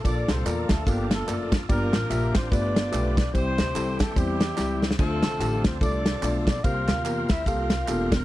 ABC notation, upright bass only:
X:1
M:4/4
L:1/8
Q:"Swing" 1/4=146
K:Cmix
V:1 name="Upright bass" clef=bass
B,,, C,, E,, D,, G,,,2 _G,,,2 | G,,, A,,, B,,, A,,, G,,,2 =B,,,2 | C,, D,, C,, D,, E,,2 _D,,2 | D,, C,, A,,, D,, C,,2 =B,,,2 |
C,, D,, E,, D,, C,,2 E,,,2 |]